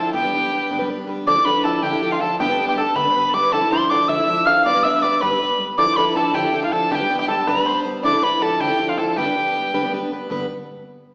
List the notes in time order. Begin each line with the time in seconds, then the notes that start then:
Already playing: F3 D4 E4 A4 A5
0.13 G2 D3 G3 B3 D4 G4 B4 G5
0.23 G3 B3 D4 B4
0.33 G3 B3 D4 B4
0.52 G3 B3 D4 B4
0.70 G2 D3 G3 B3 D4 B4
0.79 G3 B3 D4 B4
0.88 G3 B3 D4 B4
1.07 G3 B3 D4 B4
1.26 D3 F3 D4 E4 A4 D5 D6
1.36 D4 E4 A4
1.44 F3 D4 E4 A4 B4 B5
1.63 F3 D4 E4 A4 A5
1.82 D3 F3 D4 E4 G4 A4 G5
1.92 D4 E4 A4
2.01 F3 D4 E4 A4
2.11 F4 F5
2.20 F3 D4 E4 A4 A5
2.39 G2 D3 G3 B3 D4 G4 B4 G5
2.48 G3 B3 D4 A4 B4
2.57 G3 B3 D4 B4
2.64 G4 G5
2.68 G4
2.76 G3 B3 D4 A4 B4 A5
2.95 G2 D3 G3 B3 D4 B4 B5
3.05 G3 B3 D4 B4
3.11 G3 C5
3.15 B3 D4 B4
3.29 A4
3.34 G3 B3 D4 B4 D5 D6
3.52 D3 F3 D4 E4 A4 A5
3.61 D4 E4 A4
3.71 F3 D4 E4 A4 C5 C6
3.90 F3 D4 E4 A4 D5 D6
4.08 D3 F3 D4 E4 A4 E5 E6
4.17 D4 E4 A4
4.27 F3 D4 E4 A4
4.46 F3 D4 E4 A4 F5 F6
4.65 G2 D3 G3 B3 D4 B4 D5 D6
4.74 G3 B3 D4 B4
4.83 G3 B3 D4 B4 E5 E6
5.02 G3 B3 D4 B4 D5 D6
5.21 G2 D3 G3 B3 D4 B4 B5
5.31 G3 B3 D4 B4
5.40 G3 B3 D4 B4
5.59 G3 B3 D4 B4
5.78 D3 F3 D4 E4 A4 D5 D6
5.88 D4 E4
5.93 F3 C5 B5
5.97 D4 E4 A4 B4
6.15 F3 D4 E4 A4 A5
6.34 D3 F3 D4 E4 G4 A4 G5
6.44 D4 E4 A4
6.52 F3 D4 E4 A4
6.63 F4 F5
6.71 F3 D4 E4 A4 A5
6.90 G2 D3 G3 B3 D4 G4 B4 A5
6.95 G5
7.00 G3 B3 D4 B4
7.09 G3 B3 D4 B4
7.19 G4 G5
7.28 G3 B3 D4 A4 B4 A5
7.47 G2 D3 G3 B3 D4 B4 B5
7.56 G3 B3 D4 B4
7.66 G3 B3 D4 B4 C5
7.85 G3 B3 D4 B4
8.03 D3 F3 D4 E4 A4 D5 D6
8.13 D4 E4 A4
8.22 F3 D4 E4 A4 B4 B5
8.40 F3 D4 E4 A4 A5
8.60 D3 F3 D4 E4 G4 A4 G5
8.69 D4 E4 A4
8.78 F3 D4 E4 A4
8.89 F4 F5
8.98 F3 D4 E4 A4 A5
9.09 A5
9.16 G2 D3 G3 B3 D4 G4 B4 G5
9.26 G3 B3 D4 B4
9.35 G3 B3 D4 B4
9.54 G3 B3 D4 B4
9.73 G2 D3 G3 B3 D4 B4
9.83 G3 B3 D4 B4
9.92 G3 B3 D4 B4
10.11 G3 B3 D4 B4
10.29 G2 D3 G3 B3 D4 B4